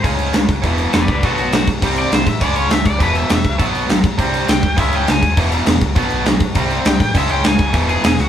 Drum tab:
CC |xxxxxxxx|xxxxxxxx|xxxxxxxx|xxxxxxxx|
SD |--o---o-|--o---o-|--o---o-|--o---o-|
BD |o--oo--o|o--oo--o|o--oo--o|o--oo--o|

CC |xxxxxxxx|xxxxxxxx|xxxxxxx-|
SD |--o---o-|--o---o-|--o---oo|
BD |o--oo--o|o--oo--o|o--oo---|